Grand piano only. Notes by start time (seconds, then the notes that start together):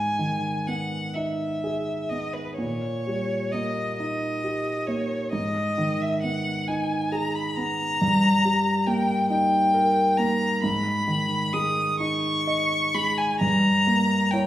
Already playing: G#2
0.19 D#3
0.68 B3
1.16 D#4
1.64 G#4
2.11 B3
2.58 A#2
3.07 G3
3.54 A#3
4.00 D#4
4.44 G4
4.88 A#3
5.33 G#2
5.78 D#3
6.24 B3
6.69 D#4
7.12 G#4
7.57 B3
8.02 G2
8.45 G3
8.87 A#3
9.30 D#4
9.74 A#4
10.19 A#3
10.63 G#2
11.08 D#3
11.54 G#3
12.00 D#4
12.47 D#5
12.94 G#3
13.41 G2
13.87 A#3
14.33 E4 C#5